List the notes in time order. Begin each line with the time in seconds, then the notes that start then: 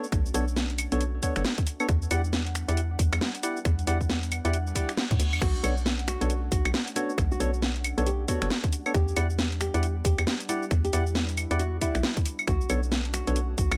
Already playing: A3 C#4 D4 F#4
0.04 cabasa
0.12 B1, finger snap, kick, closed hi-hat, cabasa
0.26 cabasa
0.34 B1 B3 D4 A4 C#5, open hi-hat, cabasa
0.48 cabasa
0.56 snare, cabasa
0.70 closed hi-hat
0.78 open hi-hat, cabasa, claves
0.92 B1 B3 D4 A4 C#5, closed hi-hat, cabasa
1.01 closed hi-hat, cabasa
1.23 B3 D4 A4 C#5, kick, open hi-hat, cabasa
1.36 F#1 B3 D4 A4 C#5, finger snap, open hi-hat, cabasa
1.45 snare, cabasa
1.58 kick, closed hi-hat, cabasa
1.67 open hi-hat, cabasa
1.80 B3 D4 A4 C#5, cabasa, claves
1.89 E2 G3 B3 D4 F#5, finger snap, kick, closed hi-hat, cabasa
2.02 cabasa
2.11 E2 E4 G4 D5 F#5, open hi-hat, cabasa, claves
2.24 cabasa
2.33 snare, cabasa
2.47 closed hi-hat
2.55 finger snap, open hi-hat, cabasa
2.68 E2 E4 G4 D5 F#5, closed hi-hat, cabasa
2.77 closed hi-hat, cabasa
2.99 E2, kick, open hi-hat, cabasa
3.13 E2, finger snap, closed hi-hat, cabasa, claves
3.21 snare, cabasa
3.35 closed hi-hat, cabasa
3.43 E4 G4 D5 F#5, open hi-hat, cabasa
3.57 cabasa
3.65 E2, finger snap, kick, closed hi-hat, cabasa
3.79 closed hi-hat, cabasa
3.87 E2 E4 G4 D5 F#5, open hi-hat, cabasa
4.01 kick, cabasa
4.10 snare, cabasa
4.23 closed hi-hat, cabasa
4.32 open hi-hat, cabasa, claves
4.45 E2 E4 G4 D5 F#5, closed hi-hat, cabasa
4.53 closed hi-hat, reverse cymbal, cabasa
4.67 cabasa
4.75 E4 G4 D5 F#5, kick, open hi-hat, cabasa
4.89 finger snap, open hi-hat, cabasa
4.97 snare, cabasa
5.11 A2, kick, closed hi-hat, cabasa
5.20 D2, open hi-hat, cabasa
5.33 E2, cabasa, claves
5.42 B1 A3 C#4 F#4, finger snap, kick, closed hi-hat, crash, cabasa
5.55 cabasa
5.64 B1 B3 D4 A4 C#5, open hi-hat, cabasa, claves
5.77 cabasa
5.86 snare, cabasa
5.99 closed hi-hat
6.08 F#4, finger snap, open hi-hat, cabasa
6.21 B1 B3 D4 A4 C#5, closed hi-hat, cabasa
6.30 closed hi-hat, cabasa
6.52 B1 F#4, kick, open hi-hat, cabasa
6.65 B1, finger snap, closed hi-hat, cabasa, claves
6.74 snare, cabasa
6.88 closed hi-hat, cabasa
6.96 B3 D4 F#4 A4 C#5, open hi-hat, cabasa
7.10 cabasa
7.18 B1, finger snap, kick, closed hi-hat, cabasa
7.32 F#4, cabasa
7.40 B1 B3 D4 A4 C#5, open hi-hat, cabasa
7.54 cabasa
7.62 snare, cabasa
7.76 closed hi-hat
7.84 open hi-hat, cabasa, claves
7.98 B1 B3 D4 A4 C#5, closed hi-hat, cabasa
8.06 G4, closed hi-hat, cabasa
8.28 B3 D4 F#4 A4 C#5, kick, open hi-hat, cabasa
8.42 F#1 B3 D4 A4 C#5, finger snap, open hi-hat, cabasa
8.50 snare, cabasa
8.64 kick, closed hi-hat, cabasa
8.73 open hi-hat, cabasa
8.86 B3 D4 A4 C#5, cabasa, claves
8.94 E2 G3 B3 G4, finger snap, kick, closed hi-hat, cabasa
9.08 cabasa
9.17 E2 E4 G4 D5 F#5, open hi-hat, cabasa, claves
9.30 cabasa
9.39 snare, cabasa
9.52 closed hi-hat
9.61 G4, finger snap, open hi-hat, cabasa
9.74 E2 E4 G4 D5 F#5, closed hi-hat, cabasa
9.83 closed hi-hat, cabasa
10.05 E2 G4, kick, open hi-hat, cabasa
10.18 E2, finger snap, closed hi-hat, cabasa, claves
10.27 snare, cabasa
10.40 closed hi-hat, cabasa
10.49 E4 G4 D5 F#5, open hi-hat, cabasa
10.63 cabasa
10.71 E2 E4, finger snap, kick, closed hi-hat, cabasa
10.85 G4, closed hi-hat, cabasa
10.93 E2 E4 G4 D5 F#5, open hi-hat, cabasa
11.07 cabasa
11.15 snare, cabasa
11.29 closed hi-hat, cabasa
11.37 open hi-hat, cabasa, claves
11.51 E2 E4 G4 D5 F#5, closed hi-hat, cabasa
11.59 F#4, closed hi-hat, cabasa
11.81 E4 G4 D5 F#5, kick, open hi-hat, cabasa
11.95 B1, finger snap, open hi-hat, cabasa
12.03 snare, cabasa
12.17 kick, closed hi-hat, cabasa
12.26 open hi-hat, cabasa
12.39 cabasa, claves
12.47 B1 A3 C#4 D4 F#4, finger snap, kick, closed hi-hat, cabasa
12.61 cabasa
12.70 B1 B3 D4 A4 C#5, open hi-hat, cabasa, claves
12.83 cabasa
12.92 snare, cabasa
13.05 closed hi-hat
13.14 F#4, finger snap, open hi-hat, cabasa
13.27 B1 B3 D4 A4 C#5, closed hi-hat, cabasa
13.36 closed hi-hat, cabasa
13.58 B1 F#4, kick, open hi-hat, cabasa
13.71 B1, finger snap, closed hi-hat, cabasa, claves